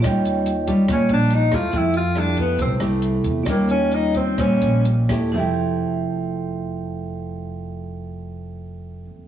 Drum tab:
HH |xxxxxxxx|xxxxxxxx|xxxxxxxx|--------|
SD |r---r--r|--r--r--|r---r--r|--------|
BD |o--oo--o|o--oo--o|o--oo--o|--------|

HH |--------|
SD |--------|
BD |--------|